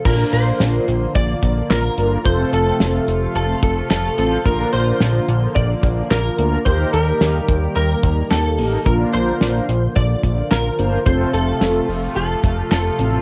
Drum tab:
CC |x-------|--------|--------|--------|
HH |-xxxxxxx|xxxxxxxx|xxxxxxxx|xxxxxxxo|
CP |------x-|------x-|------x-|------x-|
SD |--o---o-|--o---o-|--o---o-|--o---o-|
BD |o---oo--|o----o--|o---oo--|o--o-o--|

CC |--------|--------|
HH |xxxxxxxx|xxxoxxxx|
CP |------x-|------x-|
SD |--o---o-|--o---o-|
BD |o---oo--|o----o--|